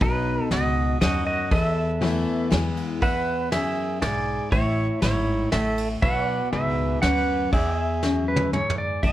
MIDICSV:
0, 0, Header, 1, 6, 480
1, 0, Start_track
1, 0, Tempo, 501253
1, 11, Time_signature, 3, 2, 24, 8
1, 8737, End_track
2, 0, Start_track
2, 0, Title_t, "Pedal steel guitar"
2, 0, Program_c, 0, 26
2, 9, Note_on_c, 0, 71, 78
2, 16, Note_on_c, 0, 75, 69
2, 1435, Note_off_c, 0, 71, 0
2, 1438, Note_off_c, 0, 75, 0
2, 1458, Note_on_c, 0, 71, 81
2, 1463, Note_on_c, 0, 75, 65
2, 1655, Note_off_c, 0, 75, 0
2, 1655, Note_on_c, 0, 76, 65
2, 2404, Note_off_c, 0, 71, 0
2, 2406, Note_off_c, 0, 76, 0
2, 2892, Note_on_c, 0, 71, 70
2, 2901, Note_on_c, 0, 76, 70
2, 4316, Note_off_c, 0, 71, 0
2, 4320, Note_off_c, 0, 76, 0
2, 4329, Note_on_c, 0, 73, 79
2, 4340, Note_on_c, 0, 76, 76
2, 5754, Note_off_c, 0, 73, 0
2, 5760, Note_off_c, 0, 76, 0
2, 5768, Note_on_c, 0, 73, 73
2, 5776, Note_on_c, 0, 76, 70
2, 5960, Note_off_c, 0, 73, 0
2, 5960, Note_on_c, 0, 74, 73
2, 6015, Note_off_c, 0, 76, 0
2, 6015, Note_on_c, 0, 78, 70
2, 7195, Note_off_c, 0, 74, 0
2, 7196, Note_off_c, 0, 78, 0
2, 7207, Note_on_c, 0, 74, 70
2, 7216, Note_on_c, 0, 78, 73
2, 7447, Note_off_c, 0, 74, 0
2, 7447, Note_on_c, 0, 76, 70
2, 7455, Note_off_c, 0, 78, 0
2, 7455, Note_on_c, 0, 80, 73
2, 8636, Note_off_c, 0, 76, 0
2, 8640, Note_off_c, 0, 80, 0
2, 8646, Note_on_c, 0, 76, 64
2, 8659, Note_on_c, 0, 81, 58
2, 8737, Note_off_c, 0, 76, 0
2, 8737, Note_off_c, 0, 81, 0
2, 8737, End_track
3, 0, Start_track
3, 0, Title_t, "Pedal steel guitar"
3, 0, Program_c, 1, 26
3, 20, Note_on_c, 1, 63, 72
3, 22, Note_on_c, 1, 71, 88
3, 462, Note_off_c, 1, 63, 0
3, 497, Note_off_c, 1, 71, 0
3, 497, Note_on_c, 1, 66, 76
3, 501, Note_on_c, 1, 75, 104
3, 941, Note_off_c, 1, 66, 0
3, 960, Note_off_c, 1, 75, 0
3, 970, Note_on_c, 1, 75, 99
3, 974, Note_on_c, 1, 66, 82
3, 1194, Note_off_c, 1, 66, 0
3, 1202, Note_off_c, 1, 75, 0
3, 1212, Note_on_c, 1, 75, 98
3, 1216, Note_on_c, 1, 66, 77
3, 1435, Note_off_c, 1, 66, 0
3, 1448, Note_on_c, 1, 69, 83
3, 1455, Note_on_c, 1, 76, 102
3, 1459, Note_off_c, 1, 75, 0
3, 2371, Note_off_c, 1, 69, 0
3, 2372, Note_off_c, 1, 76, 0
3, 2893, Note_on_c, 1, 71, 87
3, 2897, Note_on_c, 1, 78, 110
3, 3338, Note_off_c, 1, 71, 0
3, 3371, Note_on_c, 1, 68, 83
3, 3373, Note_on_c, 1, 76, 106
3, 3385, Note_off_c, 1, 78, 0
3, 3817, Note_off_c, 1, 68, 0
3, 3846, Note_off_c, 1, 76, 0
3, 3847, Note_on_c, 1, 68, 69
3, 3850, Note_on_c, 1, 74, 91
3, 4294, Note_off_c, 1, 68, 0
3, 4326, Note_off_c, 1, 74, 0
3, 4330, Note_on_c, 1, 73, 94
3, 4337, Note_on_c, 1, 64, 79
3, 4779, Note_off_c, 1, 64, 0
3, 4801, Note_off_c, 1, 73, 0
3, 4812, Note_on_c, 1, 73, 96
3, 4818, Note_on_c, 1, 64, 81
3, 5260, Note_off_c, 1, 64, 0
3, 5285, Note_off_c, 1, 73, 0
3, 5289, Note_on_c, 1, 76, 92
3, 5294, Note_on_c, 1, 69, 75
3, 5623, Note_off_c, 1, 76, 0
3, 5626, Note_off_c, 1, 69, 0
3, 5767, Note_on_c, 1, 78, 96
3, 5773, Note_on_c, 1, 71, 83
3, 6217, Note_off_c, 1, 71, 0
3, 6245, Note_off_c, 1, 78, 0
3, 6249, Note_on_c, 1, 71, 73
3, 6249, Note_on_c, 1, 76, 104
3, 6696, Note_off_c, 1, 71, 0
3, 6717, Note_off_c, 1, 76, 0
3, 6721, Note_on_c, 1, 78, 97
3, 6729, Note_on_c, 1, 71, 77
3, 7175, Note_off_c, 1, 71, 0
3, 7209, Note_off_c, 1, 78, 0
3, 7213, Note_on_c, 1, 76, 83
3, 7219, Note_on_c, 1, 68, 76
3, 7929, Note_on_c, 1, 71, 72
3, 8134, Note_off_c, 1, 76, 0
3, 8137, Note_off_c, 1, 68, 0
3, 8167, Note_off_c, 1, 71, 0
3, 8171, Note_on_c, 1, 73, 88
3, 8406, Note_off_c, 1, 73, 0
3, 8410, Note_on_c, 1, 74, 85
3, 8656, Note_on_c, 1, 76, 82
3, 8658, Note_off_c, 1, 74, 0
3, 8737, Note_off_c, 1, 76, 0
3, 8737, End_track
4, 0, Start_track
4, 0, Title_t, "Steel-string acoustic guitar"
4, 0, Program_c, 2, 25
4, 7, Note_on_c, 2, 47, 85
4, 486, Note_on_c, 2, 44, 93
4, 920, Note_off_c, 2, 47, 0
4, 944, Note_off_c, 2, 44, 0
4, 968, Note_on_c, 2, 42, 90
4, 1425, Note_off_c, 2, 42, 0
4, 1450, Note_on_c, 2, 40, 93
4, 1922, Note_on_c, 2, 52, 94
4, 1931, Note_on_c, 2, 57, 93
4, 1938, Note_on_c, 2, 59, 102
4, 1942, Note_on_c, 2, 64, 105
4, 2361, Note_off_c, 2, 40, 0
4, 2382, Note_off_c, 2, 52, 0
4, 2386, Note_off_c, 2, 57, 0
4, 2389, Note_off_c, 2, 59, 0
4, 2392, Note_off_c, 2, 64, 0
4, 2400, Note_on_c, 2, 52, 89
4, 2408, Note_on_c, 2, 56, 90
4, 2415, Note_on_c, 2, 59, 99
4, 2419, Note_on_c, 2, 64, 85
4, 2860, Note_off_c, 2, 52, 0
4, 2864, Note_off_c, 2, 56, 0
4, 2868, Note_off_c, 2, 59, 0
4, 2870, Note_off_c, 2, 64, 0
4, 2890, Note_on_c, 2, 40, 90
4, 3371, Note_off_c, 2, 40, 0
4, 3374, Note_on_c, 2, 42, 99
4, 3827, Note_off_c, 2, 42, 0
4, 3853, Note_on_c, 2, 44, 97
4, 4306, Note_off_c, 2, 44, 0
4, 4333, Note_on_c, 2, 45, 89
4, 4810, Note_on_c, 2, 44, 96
4, 5242, Note_off_c, 2, 45, 0
4, 5265, Note_off_c, 2, 44, 0
4, 5289, Note_on_c, 2, 45, 98
4, 5745, Note_off_c, 2, 45, 0
4, 5769, Note_on_c, 2, 47, 94
4, 6249, Note_on_c, 2, 44, 104
4, 6681, Note_off_c, 2, 47, 0
4, 6704, Note_off_c, 2, 44, 0
4, 6729, Note_on_c, 2, 42, 97
4, 7185, Note_off_c, 2, 42, 0
4, 7210, Note_on_c, 2, 40, 87
4, 7687, Note_off_c, 2, 40, 0
4, 7691, Note_on_c, 2, 42, 101
4, 8146, Note_off_c, 2, 42, 0
4, 8172, Note_on_c, 2, 44, 81
4, 8628, Note_off_c, 2, 44, 0
4, 8655, Note_on_c, 2, 45, 75
4, 8737, Note_off_c, 2, 45, 0
4, 8737, End_track
5, 0, Start_track
5, 0, Title_t, "Upright bass"
5, 0, Program_c, 3, 32
5, 11, Note_on_c, 3, 35, 101
5, 357, Note_off_c, 3, 35, 0
5, 486, Note_on_c, 3, 37, 85
5, 895, Note_off_c, 3, 37, 0
5, 970, Note_on_c, 3, 39, 85
5, 1378, Note_off_c, 3, 39, 0
5, 1451, Note_on_c, 3, 40, 99
5, 2141, Note_off_c, 3, 40, 0
5, 2413, Note_on_c, 3, 40, 93
5, 3448, Note_off_c, 3, 40, 0
5, 3849, Note_on_c, 3, 35, 81
5, 4195, Note_off_c, 3, 35, 0
5, 4328, Note_on_c, 3, 33, 104
5, 4674, Note_off_c, 3, 33, 0
5, 4806, Note_on_c, 3, 32, 87
5, 5215, Note_off_c, 3, 32, 0
5, 5291, Note_on_c, 3, 33, 79
5, 5697, Note_off_c, 3, 33, 0
5, 5770, Note_on_c, 3, 35, 90
5, 6115, Note_off_c, 3, 35, 0
5, 6246, Note_on_c, 3, 37, 86
5, 6655, Note_off_c, 3, 37, 0
5, 6730, Note_on_c, 3, 38, 90
5, 7137, Note_off_c, 3, 38, 0
5, 7208, Note_on_c, 3, 40, 87
5, 8247, Note_off_c, 3, 40, 0
5, 8648, Note_on_c, 3, 33, 87
5, 8737, Note_off_c, 3, 33, 0
5, 8737, End_track
6, 0, Start_track
6, 0, Title_t, "Drums"
6, 12, Note_on_c, 9, 36, 116
6, 12, Note_on_c, 9, 51, 58
6, 107, Note_off_c, 9, 36, 0
6, 108, Note_off_c, 9, 51, 0
6, 490, Note_on_c, 9, 38, 88
6, 490, Note_on_c, 9, 51, 72
6, 586, Note_off_c, 9, 38, 0
6, 586, Note_off_c, 9, 51, 0
6, 973, Note_on_c, 9, 38, 85
6, 973, Note_on_c, 9, 51, 67
6, 1069, Note_off_c, 9, 38, 0
6, 1069, Note_off_c, 9, 51, 0
6, 1449, Note_on_c, 9, 51, 66
6, 1452, Note_on_c, 9, 36, 113
6, 1545, Note_off_c, 9, 51, 0
6, 1547, Note_off_c, 9, 36, 0
6, 1928, Note_on_c, 9, 38, 86
6, 1928, Note_on_c, 9, 51, 60
6, 2024, Note_off_c, 9, 38, 0
6, 2024, Note_off_c, 9, 51, 0
6, 2412, Note_on_c, 9, 38, 93
6, 2412, Note_on_c, 9, 51, 61
6, 2508, Note_off_c, 9, 38, 0
6, 2508, Note_off_c, 9, 51, 0
6, 2652, Note_on_c, 9, 51, 59
6, 2748, Note_off_c, 9, 51, 0
6, 2891, Note_on_c, 9, 36, 108
6, 2893, Note_on_c, 9, 51, 62
6, 2987, Note_off_c, 9, 36, 0
6, 2989, Note_off_c, 9, 51, 0
6, 3371, Note_on_c, 9, 38, 85
6, 3371, Note_on_c, 9, 51, 67
6, 3467, Note_off_c, 9, 38, 0
6, 3467, Note_off_c, 9, 51, 0
6, 3850, Note_on_c, 9, 38, 99
6, 3850, Note_on_c, 9, 51, 59
6, 3946, Note_off_c, 9, 38, 0
6, 3946, Note_off_c, 9, 51, 0
6, 4328, Note_on_c, 9, 51, 58
6, 4329, Note_on_c, 9, 36, 112
6, 4423, Note_off_c, 9, 51, 0
6, 4425, Note_off_c, 9, 36, 0
6, 4807, Note_on_c, 9, 38, 86
6, 4807, Note_on_c, 9, 51, 66
6, 4903, Note_off_c, 9, 38, 0
6, 4903, Note_off_c, 9, 51, 0
6, 5286, Note_on_c, 9, 38, 90
6, 5286, Note_on_c, 9, 51, 73
6, 5382, Note_off_c, 9, 38, 0
6, 5382, Note_off_c, 9, 51, 0
6, 5531, Note_on_c, 9, 51, 75
6, 5626, Note_off_c, 9, 51, 0
6, 5766, Note_on_c, 9, 51, 65
6, 5769, Note_on_c, 9, 36, 120
6, 5862, Note_off_c, 9, 51, 0
6, 5865, Note_off_c, 9, 36, 0
6, 6249, Note_on_c, 9, 38, 85
6, 6249, Note_on_c, 9, 51, 61
6, 6345, Note_off_c, 9, 38, 0
6, 6345, Note_off_c, 9, 51, 0
6, 6727, Note_on_c, 9, 38, 92
6, 6727, Note_on_c, 9, 51, 65
6, 6823, Note_off_c, 9, 38, 0
6, 6823, Note_off_c, 9, 51, 0
6, 7207, Note_on_c, 9, 51, 61
6, 7209, Note_on_c, 9, 36, 112
6, 7302, Note_off_c, 9, 51, 0
6, 7304, Note_off_c, 9, 36, 0
6, 7686, Note_on_c, 9, 38, 66
6, 7781, Note_off_c, 9, 38, 0
6, 8007, Note_on_c, 9, 48, 90
6, 8103, Note_off_c, 9, 48, 0
6, 8169, Note_on_c, 9, 47, 83
6, 8265, Note_off_c, 9, 47, 0
6, 8329, Note_on_c, 9, 45, 100
6, 8424, Note_off_c, 9, 45, 0
6, 8644, Note_on_c, 9, 51, 57
6, 8649, Note_on_c, 9, 36, 93
6, 8737, Note_off_c, 9, 36, 0
6, 8737, Note_off_c, 9, 51, 0
6, 8737, End_track
0, 0, End_of_file